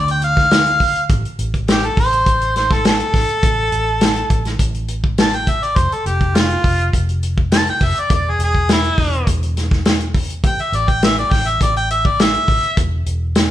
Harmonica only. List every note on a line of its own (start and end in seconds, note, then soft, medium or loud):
0.11 0.23 G5 medium
0.24 1.08 F5 loud
1.70 1.87 G4 loud
1.86 1.98 A4 medium
2.00 2.55 C5 loud
2.57 2.74 C5 medium
2.72 2.84 A4 loud
2.87 4.57 A4 loud
5.20 5.37 A5 loud
5.36 5.51 G5 medium
5.50 5.65 E5 medium
5.63 5.79 D5 medium
5.78 5.95 C5 medium
5.93 6.06 A4 medium
6.06 6.38 G4 medium
6.36 6.92 F4 loud
7.54 7.67 A5 loud
7.70 7.86 G5 medium
7.85 8.01 E5 medium
8.00 8.11 D5 loud
8.15 8.32 D5 medium
8.30 8.41 G#4 medium
8.43 8.70 G#4 loud
8.72 9.27 E4 loud
10.47 10.63 G5 loud
10.61 10.77 E5 loud
10.76 10.91 D5 medium
10.89 11.02 G5 loud
11.04 11.17 E5 loud
11.19 11.34 D5 loud
11.32 11.50 G5 loud
11.48 11.61 E5 loud
11.62 11.75 D5 loud
11.77 11.89 G5 loud
11.91 12.07 E5 loud
12.06 12.22 D5 loud
12.21 12.77 E5 loud